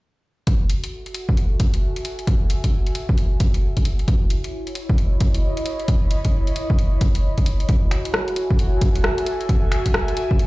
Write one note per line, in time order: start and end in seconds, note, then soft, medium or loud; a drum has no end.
0.47 5.43 F#4 medium
0.47 kick loud
0.47 closed hi-hat medium
0.58 4.08 A4 medium
0.70 open hi-hat loud
0.84 4.08 E5 medium
0.84 closed hi-hat medium
1.06 closed hi-hat soft
1.14 open hi-hat loud
1.29 kick loud
1.37 4.82 G#5 medium
1.37 closed hi-hat medium
1.60 kick loud
1.60 open hi-hat loud
1.74 closed hi-hat medium
1.96 closed hi-hat soft
2.05 open hi-hat loud
2.19 closed hi-hat soft
2.27 kick loud
2.27 closed hi-hat medium
2.50 open hi-hat loud
2.64 kick medium
2.64 closed hi-hat medium
2.87 closed hi-hat soft
2.95 open hi-hat loud
3.09 kick loud
3.18 closed hi-hat medium
3.40 kick loud
3.40 open hi-hat loud
3.54 closed hi-hat medium
3.77 kick medium
3.77 closed hi-hat soft
3.85 open hi-hat loud
3.99 closed hi-hat soft
4.08 8.81 E4 medium
4.08 kick loud
4.08 closed hi-hat medium
4.27 9.16 C#5 medium
4.27 open hi-hat loud
4.44 closed hi-hat medium
4.67 7.69 D#5 medium
4.67 8.99 B5 medium
4.67 closed hi-hat soft
4.75 open hi-hat loud
4.89 kick loud
4.98 closed hi-hat medium
5.20 kick loud
5.20 open hi-hat loud
5.34 closed hi-hat medium
5.57 closed hi-hat soft
5.66 open hi-hat loud
5.80 closed hi-hat soft
5.88 kick loud
5.88 closed hi-hat medium
6.11 open hi-hat loud
6.25 kick medium
6.25 closed hi-hat medium
6.47 closed hi-hat soft
6.56 open hi-hat medium
6.70 kick loud
6.78 closed hi-hat medium
7.01 kick loud
7.01 open hi-hat medium
7.15 closed hi-hat medium
7.38 kick medium
7.38 closed hi-hat soft
7.46 open hi-hat loud
7.60 closed hi-hat soft
7.69 10.47 F#4 medium
7.69 kick loud
7.69 closed hi-hat medium
7.90 10.47 G#5 medium
7.90 finger snap medium
7.90 open hi-hat loud
8.05 10.47 A4 medium
8.05 10.47 E5 medium
8.05 closed hi-hat medium
8.14 cross-stick loud
8.28 closed hi-hat soft
8.36 open hi-hat loud
8.51 kick loud
8.59 closed hi-hat medium
8.81 kick loud
8.81 open hi-hat loud
8.95 closed hi-hat medium
9.04 cross-stick loud
9.18 closed hi-hat soft
9.26 open hi-hat loud
9.41 closed hi-hat soft
9.49 kick loud
9.49 closed hi-hat medium
9.72 finger snap medium
9.72 open hi-hat loud
9.86 kick medium
9.86 closed hi-hat medium
9.94 cross-stick loud
10.08 closed hi-hat soft
10.17 open hi-hat loud
10.31 kick medium
10.39 closed hi-hat medium